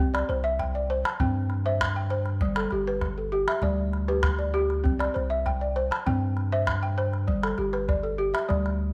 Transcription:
Already playing: balafon G4
0.00 sub bass C2, balafon C4
0.14 balafon D5, calabash click
0.29 sub bass C2, balafon C5, calabash click
0.44 balafon E5
0.59 balafon G5, calabash thump, calabash click
0.75 balafon D5
0.90 balafon C5
1.05 balafon A5, calabash click
1.20 sub bass G2, balafon C4 G5, calabash thump
1.50 calabash click
1.66 balafon C5 E5
1.81 calabash thump, calabash click
1.96 balafon G5, calabash click
2.10 balafon C5, calabash click
2.26 calabash click
2.41 sub bass G1, balafon G3, calabash thump
2.56 balafon A4, calabash click
2.71 sub bass G1, balafon G4, calabash click
2.87 balafon B4
3.01 calabash thump, calabash click
3.18 balafon A4
3.32 balafon G4
3.48 balafon E5, calabash click
3.62 sub bass D2, balafon G3 D5, calabash thump
3.93 calabash click
4.08 balafon G4 B4
4.23 calabash thump, calabash click
4.39 balafon D5, calabash click
4.54 balafon G4, calabash click
4.70 calabash click
4.84 sub bass C2, balafon C4, calabash thump
4.99 balafon D5, calabash click
5.14 sub bass C2, balafon C5, calabash click
5.30 balafon E5
5.46 balafon G5, calabash thump, calabash click
5.61 balafon D5
5.76 balafon C5
5.91 balafon A5, calabash click
6.06 sub bass G2, balafon C4 G5, calabash thump
6.37 calabash click
6.52 balafon C5 E5
6.67 calabash thump, calabash click
6.83 balafon G5, calabash click
6.98 balafon C5, calabash click
7.13 calabash click
7.28 sub bass G1, balafon G3, calabash thump
7.43 balafon A4, calabash click
7.58 sub bass G1, balafon G4, calabash click
7.73 balafon B4, calabash click
7.89 balafon D5, calabash thump, calabash click
8.03 balafon A4
8.18 balafon G4
8.34 balafon E5, calabash click
8.49 sub bass D2, balafon G3 D5, calabash thump, calabash click
8.66 calabash click

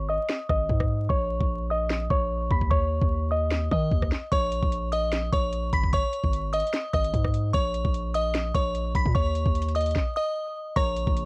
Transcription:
Already playing: 808-style bass G#1
0.09 synth bell D#5 D#6
0.29 snare
0.49 808-style bass G#1, synth bell D#5 D#6, kick, cross-stick
0.69 808-style bass G#2, kick
0.80 kick, cross-stick
1.09 808-style bass A#1, synth bell C#5 C#6, kick
1.40 808-style bass A#1, kick
1.70 synth bell D#5 D#6
1.90 snare
2.10 808-style bass A#1, synth bell C#5 C#6, kick
2.51 808-style bass D#2, synth bell B5 B6, kick
2.61 kick
2.70 synth bell C#5 C#6, kick
3.01 808-style bass D#2, kick
3.31 synth bell D#5 D#6
3.51 snare
3.71 808-style bass D#3, synth bell D#5 D#6, kick, cross-stick
3.91 808-style bass D#2, kick
4.02 kick, cross-stick
4.12 snare
4.32 808-style bass A#1, synth bell C#5 C#6, kick, closed hi-hat
4.52 closed hi-hat
4.63 808-style bass A#1, kick
4.72 closed hi-hat
4.92 synth bell D#5 D#6, closed hi-hat
5.12 snare, closed hi-hat
5.32 808-style bass A#1, synth bell C#5 C#6, kick, closed hi-hat
5.53 closed hi-hat
5.73 808-style bass G#1, synth bell B5 B6, kick, closed hi-hat
5.83 kick
5.93 synth bell C#5 C#6, kick, closed hi-hat
6.13 closed hi-hat
6.24 808-style bass G#1, kick
6.33 closed hi-hat
6.53 synth bell D#5 D#6, closed hi-hat
6.60 closed hi-hat
6.67 closed hi-hat
6.74 snare, closed hi-hat
6.93 808-style bass G#1, synth bell D#5 D#6, kick, cross-stick, closed hi-hat
7.04 closed hi-hat
7.14 808-style bass G#2, kick, closed hi-hat
7.24 kick, cross-stick
7.34 closed hi-hat
7.53 808-style bass A#1, synth bell C#5 C#6, kick, closed hi-hat
7.74 closed hi-hat
7.85 808-style bass A#1, kick
7.94 closed hi-hat
8.14 synth bell D#5 D#6, closed hi-hat
8.35 snare, closed hi-hat
8.54 808-style bass A#1, synth bell C#5 C#6, kick, closed hi-hat
8.75 closed hi-hat
8.95 808-style bass A#1, synth bell B5 B6, kick, closed hi-hat
9.06 808-style bass A#2, kick
9.15 808-style bass D#2, synth bell C#5 C#6, kick, closed hi-hat
9.35 closed hi-hat
9.46 808-style bass D#2, kick
9.55 closed hi-hat
9.62 closed hi-hat
9.69 closed hi-hat
9.75 synth bell D#5 D#6, closed hi-hat
9.81 closed hi-hat
9.86 closed hi-hat
9.91 closed hi-hat
9.96 kick, snare
10.16 synth bell D#5 D#6
10.76 808-style bass A#1, analog synth pad C#3 A#3 F4 G#4, synth bell C#5 C#6, synth pluck A#5, kick, closed hi-hat
10.96 closed hi-hat
11.07 808-style bass A#1, kick
11.17 closed hi-hat

